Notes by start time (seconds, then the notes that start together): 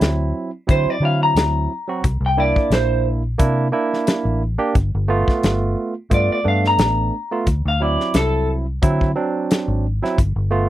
Already playing: F#3 C4 E4
0.01 D2, snare, closed hi-hat
0.67 D3 F#3 C4 E4 C5, kick, closed hi-hat
0.86 muted fingered electric bass stroke
0.90 D5
1.00 D3 F#3 C4 E4
1.05 F5
1.23 A#5
1.35 D2, snare, closed hi-hat
1.88 F#3 C4 F#4
2.04 C2, kick, closed hi-hat
2.21 C2
2.26 G5
2.37 A#3 D4 E4 D5
2.56 kick
2.70 A#1 C5, snare, closed hi-hat
3.38 C3 A#3 D4 E4, kick, closed hi-hat
3.72 A#3 D4 E4
3.93 snare
4.07 snare, closed hi-hat
4.25 A1
4.58 A#3 D4 G4
4.75 G1, kick, closed hi-hat
4.95 G1
5.08 A3 B3 F4
5.28 kick, snare
5.43 G1, snare, closed hi-hat
6.10 G2 A3 B3 F4, kick, closed hi-hat
6.14 D5
6.30 D5, muted fingered electric bass stroke
6.44 G2 A3 B3 D4
6.48 F5
6.64 A#5, snare
6.78 A1, snare, closed hi-hat
7.31 A3 B3 F4
7.47 D2, kick, closed hi-hat
7.65 D2 F5
7.80 F#3 C4 E4 D5
8.00 snare
8.14 C2 A4, snare, closed hi-hat
8.82 D3 F#3 C4 E4, kick, closed hi-hat
9.01 kick
9.16 F#3 C4 D4
9.51 snare, closed hi-hat
9.68 G#1
10.02 F#3 C4 E4, snare
10.18 G1, kick, closed hi-hat
10.36 G1
10.51 A3 B3 F4